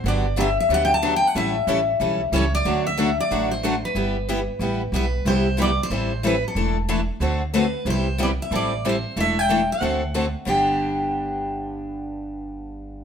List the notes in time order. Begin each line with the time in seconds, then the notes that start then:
0.04 G1 D3 F#3 B3 D4 G4
0.08 D5
0.36 D3 F#3 B3 D4 G4
0.41 E5
0.60 E5
0.69 D2 D3 F#3 B3 D4 G4
0.74 F#5
0.85 G5
0.94 A5
1.02 D3 F#3 B3 D4 G4
1.16 G5
1.27 F#5
1.35 A1 E3 G3 C#4 E4 A4 E5
1.67 A1 E3 G3 C#4 E4 A4
2.00 B1 E3 G3 C#4 E4 A4
2.32 C#2 E3 G3 C#4 E4 A4 C#5
2.55 D5
2.65 D2 D3 F#3 A3 D4 F#4 A4
2.87 E5
2.97 D3 F#3 A3 D4 F#4 A4
3.20 D5
3.31 A1 D3 F#3 A3 D4 F#4 A4
3.51 C5
3.64 D3 F#3 A3 D4 F#4 A4
3.85 B4
3.95 G1 G3 B3 E4 G4
4.29 G3 B3 E4 G4
4.59 A1 G3 B3 E4 G4
4.92 B1 G3 B3 E4 G4
4.96 B4
5.25 C2 C3 G3 B3 E4 G4 C5
5.57 C3 G3 B3 E4 G4
5.62 D5
5.83 C5
5.90 A1 E3 G3 C4 E4 A4
6.23 E3 G3 C4 E4 A4 B4
6.48 A4
6.55 E1 E3 A3 D4 E4 A4
6.89 E3 A3 D4 E4 A4
7.20 D2 D3 A3 C4 F#4 A4
7.54 D3 A3 C4 F#4 A4 B4
7.85 C2 C3 G3 B3 E4 G4
7.90 C5
8.18 C3 G3 B3 E4 G4
8.23 D5
8.42 E5
8.51 A1 E3 G3 C4 E4 A4
8.55 D5
8.85 E3 G3 C4 E4 A4
8.89 C5
9.16 E1 E3 A3 D4 E4 A4
9.20 E5
9.39 G5
9.50 E3 A3 D4 E4 A4
9.72 F#5
9.81 D2 D3 A3 C4 F#4 A4
10.14 D3 A3 C4 F#4 A4
10.45 G1 G2 D3 B3 D4 G4 G5